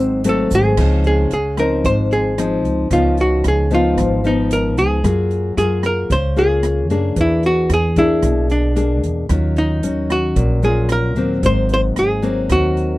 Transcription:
Already playing: upright bass G#1, nylon-string guitar G#2 F#3 C4, hollow-body jazz guitar C4 C5
0.24 nylon-string guitar F#3 A3 C4, closed hi-hat
0.29 hollow-body jazz guitar A4
0.51 upright bass G#1, kick, closed hi-hat, shaker
0.55 hollow-body jazz guitar G#4
0.77 upright bass C#2, nylon-string guitar C#3 F3 C4 D#4, kick, cross-stick, crash
1.04 hollow-body jazz guitar G#4, closed hi-hat
1.31 upright bass C#2, hollow-body jazz guitar G#4, closed hi-hat
1.57 nylon-string guitar F3 C4 D#4, hollow-body jazz guitar A#4, cross-stick, closed hi-hat
1.84 upright bass G#1, nylon-string guitar G#2, hollow-body jazz guitar C5, kick, closed hi-hat
2.12 hollow-body jazz guitar G#4, closed hi-hat
2.38 nylon-string guitar F3 C4 D#4, cross-stick, closed hi-hat
2.64 upright bass C#2, closed hi-hat
2.90 upright bass C#2, nylon-string guitar C#3 F3 B3 D#4, hollow-body jazz guitar F4, kick, closed hi-hat
3.17 hollow-body jazz guitar F#4, closed hi-hat
3.44 upright bass C#2, cross-stick, closed hi-hat
3.48 hollow-body jazz guitar G#4
3.71 nylon-string guitar F3 B3 D#4, hollow-body jazz guitar F4, closed hi-hat
3.97 upright bass G#1, nylon-string guitar G#2, kick, cross-stick, closed hi-hat
4.24 nylon-string guitar F3 B3 D#4, hollow-body jazz guitar D#4, closed hi-hat
4.51 hollow-body jazz guitar A#4, closed hi-hat
4.77 upright bass C#2, hollow-body jazz guitar G#4, closed hi-hat
5.04 upright bass F#2, nylon-string guitar F#3 A#3 F4 G#4, kick, cross-stick, closed hi-hat
5.31 closed hi-hat
5.57 upright bass F#2, nylon-string guitar A#3 F4 G#4, hollow-body jazz guitar G#4, closed hi-hat
5.83 hollow-body jazz guitar A#4, cross-stick, closed hi-hat
6.10 upright bass C#2, nylon-string guitar C#3, hollow-body jazz guitar C5, kick, closed hi-hat
6.36 nylon-string guitar A#3 F4 G#4, hollow-body jazz guitar G#4, closed hi-hat
6.63 cross-stick, closed hi-hat
6.90 upright bass F#2, nylon-string guitar A#3 D4 G#4, closed hi-hat
7.16 upright bass E2, nylon-string guitar E3, kick, closed hi-hat
7.21 hollow-body jazz guitar E4
7.43 hollow-body jazz guitar F#4, closed hi-hat
7.70 upright bass E2, cross-stick, closed hi-hat
7.74 hollow-body jazz guitar G#4
7.96 nylon-string guitar A#3 D4 G#4, hollow-body jazz guitar E4, kick, closed hi-hat
8.22 upright bass B1, nylon-string guitar B2, kick, cross-stick, closed hi-hat
8.50 hollow-body jazz guitar D4, closed hi-hat
8.76 nylon-string guitar A#3 D4 G#4, closed hi-hat
9.03 upright bass E2, closed hi-hat
9.29 upright bass D#2, nylon-string guitar D#3 F#3 C#4 F4, kick, cross-stick, closed hi-hat
9.56 hollow-body jazz guitar D#4, closed hi-hat
9.83 upright bass D#2, nylon-string guitar F#3 C#4, closed hi-hat
10.10 hollow-body jazz guitar F#4, cross-stick, closed hi-hat
10.36 upright bass A#1, nylon-string guitar A#2, kick, closed hi-hat
10.62 nylon-string guitar F#3 C#4 F4, hollow-body jazz guitar G#4, closed hi-hat
10.89 hollow-body jazz guitar A#4, cross-stick, closed hi-hat
11.16 upright bass D#2, nylon-string guitar F#3 A#3 C4, closed hi-hat
11.43 upright bass G#1, nylon-string guitar G#2, hollow-body jazz guitar C5, kick, closed hi-hat
11.69 closed hi-hat
11.74 hollow-body jazz guitar C5
11.96 upright bass G#1, hollow-body jazz guitar G#4, cross-stick, closed hi-hat
12.22 nylon-string guitar F#3 A#3 C4, closed hi-hat
12.49 upright bass D#2, nylon-string guitar D#3, hollow-body jazz guitar F#4, kick, cross-stick, closed hi-hat
12.77 closed hi-hat

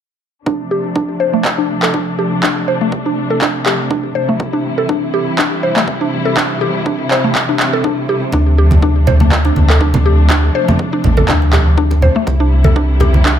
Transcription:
0.46 string section C3 F3 A3 D4, synth pluck D4, kick
0.71 synth pluck G4
0.96 synth pluck D4, kick
1.20 synth pluck C5
1.33 synth pluck A3
1.45 kick, clap
1.58 synth pluck D4
1.82 synth pluck A4, clap
1.94 synth pluck D4, kick
2.19 synth pluck G4
2.43 synth pluck D4, kick, clap
2.68 synth pluck C5
2.81 synth pluck A3
2.92 kick
3.06 synth pluck D4
3.30 synth pluck A4
3.41 synth pluck D4, kick, clap
3.66 synth pluck G4, clap
3.91 synth pluck D4, kick
4.15 synth pluck C5
4.29 synth pluck A3
4.40 string section E3 G3 E4, kick
4.53 synth pluck D4
4.78 synth pluck A4
4.89 synth pluck D4, kick
5.14 synth pluck G4
5.38 synth pluck D4, kick, clap
5.63 synth pluck C5
5.76 synth pluck A3, clap
5.88 kick
6.01 synth pluck D4
6.25 synth pluck A4
6.37 synth pluck D4, kick, clap
6.61 synth pluck G4
6.86 synth pluck D4, kick
7.11 synth pluck C5, clap
7.24 synth pluck A3
7.35 kick, clap
7.49 synth pluck D4
7.60 clap
7.73 synth pluck A4
7.84 synth pluck D4, kick
8.09 synth pluck G4
8.32 sub bass D2, string section F3 A3 D4, synth pluck D4, kick, muted conga
8.58 synth pluck G4
8.71 muted conga, high conga
8.82 synth pluck D4, kick
9.07 synth pluck C5, muted conga, low conga
9.20 synth pluck A3, high conga
9.32 kick, clap
9.45 synth pluck D4, muted conga
9.56 sub bass D2, high conga
9.70 synth pluck A4, clap
9.81 synth pluck D4, kick
9.94 muted conga, high conga, low conga
10.06 synth pluck G4
10.30 synth pluck D4, kick, clap, muted conga
10.55 synth pluck C5
10.68 synth pluck A3, muted conga, high conga
10.79 kick
10.93 synth pluck D4
11.04 sub bass A1, muted conga, low conga
11.17 synth pluck A4, high conga
11.28 sub bass D2, synth pluck D4, kick, clap, low conga
11.42 muted conga
11.53 synth pluck G4, clap, low conga
11.77 synth pluck D4, kick
11.91 muted conga
12.02 synth pluck C5, low conga
12.16 synth pluck A3
12.27 sub bass C2, string section C3 E3 G3 E4, kick, muted conga
12.40 synth pluck D4
12.64 synth pluck A4, muted conga, high conga
12.76 synth pluck D4, kick
13.00 synth pluck G4, muted conga, low conga
13.14 high conga
13.25 synth pluck D4, kick, clap

